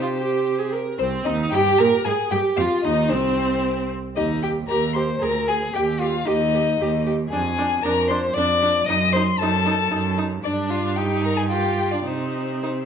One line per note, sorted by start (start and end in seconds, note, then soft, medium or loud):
0.00 0.78 C3 soft
0.00 0.08 F4 soft
0.00 0.76 G4 soft
0.00 0.71 C5 medium
0.17 0.60 G4 medium
0.59 0.74 G#4 medium
0.73 0.99 A#4 medium
0.99 1.24 C2 medium
0.99 1.27 C4 medium
0.99 1.28 C4 medium
0.99 1.07 C5 medium
1.24 1.52 D#2 medium
1.24 1.51 D#4 medium
1.24 1.56 D#4 medium
1.24 1.32 D#5 medium
1.51 1.78 G2 medium
1.51 1.60 G4 medium
1.51 1.82 G4 medium
1.51 1.80 G5 medium
1.79 1.87 A#2 medium
1.79 1.87 A#4 medium
1.79 2.06 A#4 medium
1.79 2.06 A#5 medium
2.05 2.13 G#2 medium
2.05 2.13 G#4 medium
2.05 2.35 G#4 medium
2.05 2.30 G#5 medium
2.31 2.39 G2 medium
2.31 2.39 G4 medium
2.31 2.62 G4 medium
2.31 2.39 G5 medium
2.57 2.66 F2 medium
2.57 2.86 F4 medium
2.57 2.65 F5 medium
2.83 3.13 D#2 medium
2.83 3.12 D#4 medium
2.83 3.14 D#4 medium
2.83 3.11 D#5 medium
3.10 3.90 C2 medium
3.10 3.89 C4 medium
3.10 3.90 C4 medium
3.10 3.89 C5 medium
4.16 4.63 D#2 medium
4.16 4.41 D#4 medium
4.16 4.24 G4 soft
4.16 4.24 D#5 medium
4.42 4.50 G4 soft
4.42 4.51 G4 medium
4.42 4.51 G5 medium
4.68 5.15 D#2 medium
4.68 4.78 G4 medium
4.68 4.94 A#4 medium
4.68 4.93 A#5 medium
4.94 5.03 G4 medium
4.94 5.24 C5 medium
4.94 5.02 C6 medium
5.21 5.68 D2 medium
5.21 5.29 G#4 soft
5.21 5.49 A#4 medium
5.21 5.47 A#5 medium
5.48 5.75 G#4 medium
5.48 5.57 G#4 soft
5.48 5.56 G#5 medium
5.74 6.20 D#2 medium
5.74 6.01 G4 medium
5.74 5.83 G4 soft
5.74 5.83 G5 medium
6.00 6.27 F4 medium
6.00 6.09 G4 soft
6.00 6.28 F5 medium
6.26 6.73 D#2 medium
6.26 7.04 D#4 medium
6.26 6.35 G4 medium
6.26 7.05 D#5 medium
6.54 6.62 G4 medium
6.80 7.25 D#2 medium
6.80 6.89 G4 medium
7.06 7.14 G4 medium
7.29 7.76 F2 medium
7.29 7.40 D4 soft
7.29 7.78 G#4 medium
7.29 7.85 G#5 medium
7.58 7.66 D4 medium
7.82 8.28 F2 medium
7.82 7.93 D4 medium
7.82 8.09 A#4 medium
7.82 8.08 A#5 medium
8.08 8.18 D4 medium
8.08 8.35 C5 medium
8.08 8.17 C6 medium
8.34 8.81 F2 medium
8.34 8.45 D4 medium
8.34 8.87 D5 medium
8.34 8.86 D6 medium
8.62 8.70 D4 soft
8.86 9.33 F#2 medium
8.86 8.97 D#4 medium
8.86 9.12 D#5 medium
8.86 9.14 D#6 medium
9.13 9.23 D#4 medium
9.13 9.21 C5 medium
9.13 9.40 C6 medium
9.39 9.85 F#2 medium
9.39 9.50 D#4 medium
9.39 10.17 A4 medium
9.39 10.18 A5 medium
9.66 9.74 D#4 medium
9.91 10.38 F#2 medium
9.91 9.99 D#4 soft
10.18 10.26 D#4 medium
10.44 12.02 G2 medium
10.44 10.98 D4 medium
10.44 10.72 D4 medium
10.44 10.52 D5 medium
10.70 10.97 F4 medium
10.70 10.98 F5 medium
10.96 11.49 D#4 medium
10.96 11.26 G4 soft
10.96 11.23 G5 medium
11.24 11.36 A#4 medium
11.24 11.39 A#5 medium
11.37 11.42 G#4 soft
11.37 11.49 G#5 medium
11.50 12.05 F4 soft
11.50 11.91 G4 medium
11.50 11.93 G5 medium
11.91 11.99 D4 soft
11.91 12.09 D5 medium
12.05 12.85 C3 soft
12.05 12.85 C4 soft
12.05 12.55 D#4 soft
12.05 12.85 C5 medium
12.63 12.71 D#4 soft